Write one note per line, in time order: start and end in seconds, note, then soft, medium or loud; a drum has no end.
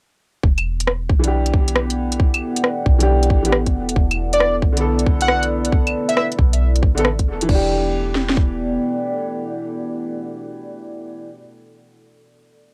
0.42 1.11 E1 loud
0.42 7.48 B3 medium
0.42 kick loud
0.58 7.49 E4 medium
0.58 closed hi-hat soft
0.58 claves medium
0.63 7.49 A4 medium
0.80 closed hi-hat medium
0.86 7.49 F#5 medium
0.86 cross-stick medium
0.91 7.50 D5 medium
1.10 2.41 B1 loud
1.10 kick loud
1.19 2.95 E3 medium
1.23 2.97 D4 medium
1.23 closed hi-hat medium
1.27 2.99 G4 medium
1.46 closed hi-hat soft
1.54 kick medium
1.68 closed hi-hat medium
1.76 cross-stick loud
1.90 closed hi-hat soft
2.12 closed hi-hat medium
2.20 kick loud
2.34 closed hi-hat soft
2.34 claves medium
2.56 closed hi-hat medium
2.64 cross-stick medium
2.86 3.32 B1 loud
2.86 kick loud
2.99 3.40 E3 medium
2.99 3.41 D4 medium
2.99 3.42 G4 medium
2.99 closed hi-hat medium
3.23 closed hi-hat soft
3.30 3.76 A1 medium
3.30 kick loud
3.43 3.49 E3 medium
3.43 3.50 D4 medium
3.43 3.51 G4 medium
3.43 closed hi-hat medium
3.52 cross-stick loud
3.66 kick medium
3.66 closed hi-hat soft
3.74 3.95 E1 medium
3.89 closed hi-hat medium
3.96 4.64 E1 loud
3.96 kick loud
4.11 closed hi-hat soft
4.11 claves medium
4.33 4.56 D5 medium
4.33 closed hi-hat medium
4.40 cross-stick loud
4.62 5.94 B1 loud
4.62 kick loud
4.73 6.48 D3 medium
4.77 6.50 B3 medium
4.77 closed hi-hat medium
4.81 6.52 A4 medium
4.99 closed hi-hat soft
5.06 kick loud
5.21 5.44 F#5 loud
5.21 closed hi-hat medium
5.28 cross-stick loud
5.43 closed hi-hat soft
5.65 closed hi-hat medium
5.72 kick loud
5.87 closed hi-hat soft
5.87 claves medium
6.09 6.14 E5 medium
6.09 closed hi-hat medium
6.17 6.26 E5 medium
6.17 cross-stick loud
6.32 closed hi-hat soft
6.39 6.84 B1 loud
6.39 kick loud
6.53 closed hi-hat medium
6.76 closed hi-hat soft
6.83 7.29 A1 medium
6.83 kick loud
6.95 7.02 D3 medium
6.95 7.03 B3 medium
6.95 7.04 A4 medium
6.95 closed hi-hat medium
7.05 cross-stick loud
7.19 kick medium
7.19 closed hi-hat soft
7.27 7.48 E1 medium
7.41 11.27 E3 medium
7.41 closed hi-hat medium
7.49 8.77 E1 medium
7.49 11.34 B3 medium
7.49 11.33 D4 medium
7.49 kick loud
7.49 crash medium
7.55 11.39 G4 medium
7.59 11.44 E4 medium
7.65 11.50 A4 medium
7.71 11.55 D5 medium
7.77 11.62 F#5 medium
8.15 snare medium
8.29 snare medium
8.37 kick medium